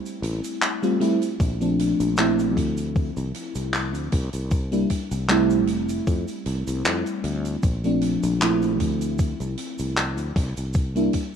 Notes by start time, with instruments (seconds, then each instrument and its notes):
Already playing: fm electric piano G3 A3 C4 E4
0.06 closed hi-hat, cabasa
0.22 fretless electric bass A1, closed hi-hat
0.44 closed hi-hat, cabasa
0.62 clap, closed hi-hat, cabasa
0.82 fm electric piano G3 A3 C4 F4, closed hi-hat, cabasa
1.00 fm electric piano G3 A3 C4 E4, closed hi-hat
1.22 closed hi-hat, cabasa
1.40 fretless electric bass A#1, kick, closed hi-hat, cabasa
1.61 fm electric piano F3 A3 C4 D4, closed hi-hat, cabasa
1.79 closed hi-hat
2.00 fretless electric bass A#1, closed hi-hat, cabasa
2.17 fm electric piano F3 A3 C4 E4, clap, closed hi-hat, cabasa
2.39 closed hi-hat, cabasa
2.57 fretless electric bass D2, kick, closed hi-hat
2.77 closed hi-hat, cabasa
2.95 kick, closed hi-hat, cabasa
3.17 fretless electric bass C2, closed hi-hat, cabasa
3.34 closed hi-hat
3.55 fretless electric bass C2, closed hi-hat, cabasa
3.73 clap, closed hi-hat, cabasa
3.94 fretless electric bass D2, closed hi-hat, cabasa
4.12 fretless electric bass C2, kick, closed hi-hat
4.33 fretless electric bass C2, closed hi-hat, cabasa
4.51 kick, closed hi-hat, cabasa
4.72 fm electric piano G3 A#3 D4 E4, closed hi-hat, cabasa
4.90 kick, closed hi-hat
5.11 fretless electric bass C2, closed hi-hat, cabasa
5.28 fm electric piano G3 A3 C4 E4, clap, closed hi-hat, cabasa
5.50 closed hi-hat, cabasa
5.67 fretless electric bass F1, closed hi-hat
5.89 closed hi-hat, cabasa
6.07 fretless electric bass F2, kick, closed hi-hat, cabasa
6.28 closed hi-hat, cabasa
6.46 fretless electric bass C2, closed hi-hat
6.67 fretless electric bass C2, closed hi-hat, cabasa
6.84 fretless electric bass F2, clap, closed hi-hat, cabasa
7.06 closed hi-hat, cabasa
7.24 fretless electric bass D2, closed hi-hat
7.45 closed hi-hat, cabasa
7.63 fretless electric bass A#1, kick, closed hi-hat, cabasa
7.84 fm electric piano F3 A3 C4 D4, closed hi-hat, cabasa
8.01 closed hi-hat
8.23 fretless electric bass A#1, closed hi-hat, cabasa
8.40 fm electric piano F3 A3 C4 E4, clap, closed hi-hat, cabasa
8.62 closed hi-hat, cabasa
8.80 fretless electric bass D2, kick, closed hi-hat
9.01 closed hi-hat, cabasa
9.18 kick, closed hi-hat, cabasa
9.40 fretless electric bass C2, closed hi-hat, cabasa
9.58 closed hi-hat
9.79 fretless electric bass C2, closed hi-hat, cabasa
9.96 clap, closed hi-hat, cabasa
10.18 fretless electric bass D2, closed hi-hat, cabasa
10.36 fretless electric bass C2, kick, closed hi-hat
10.57 fretless electric bass C2, closed hi-hat, cabasa
10.73 kick, closed hi-hat, cabasa
10.95 fm electric piano G3 A#3 D4 E4, closed hi-hat, cabasa
11.13 kick, closed hi-hat